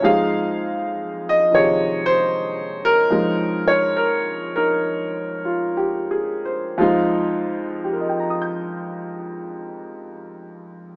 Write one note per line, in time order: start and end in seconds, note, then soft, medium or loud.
0.02 3.09 F2 medium
0.02 1.50 F3 medium
0.02 3.10 G#3 medium
0.02 3.10 D#4 medium
0.02 1.50 G#4 medium
0.02 1.32 F5 medium
1.29 1.52 D#5 medium
1.51 3.12 C3 medium
1.51 3.11 D#3 soft
1.51 3.10 F3 soft
1.51 2.02 C#5 medium
1.56 3.08 G#4 medium
2.06 2.81 C5 loud
2.85 3.63 A#4 loud
3.10 6.76 F2 medium
3.10 6.77 F3 medium
3.10 6.79 G#3 soft
3.10 4.56 D#4 medium
3.68 3.74 C#5 medium
3.97 4.54 A#4 medium
4.56 6.42 D#4 medium
4.56 6.42 A#4 medium
5.45 5.96 F4 soft
5.77 6.40 G4 medium
6.11 6.64 G#4 medium
6.45 6.99 C5 medium
6.78 10.96 F2 medium
6.78 10.96 F3 medium
6.78 10.96 G#3 medium
6.78 10.96 D#4 medium
6.78 10.96 F4 medium
7.84 10.96 G4 soft
7.92 10.96 A#4 soft
8.00 10.96 D#5 soft
8.09 10.96 G5 soft
8.20 10.96 A#5 soft
8.30 10.96 D#6 soft
8.42 10.96 G6 soft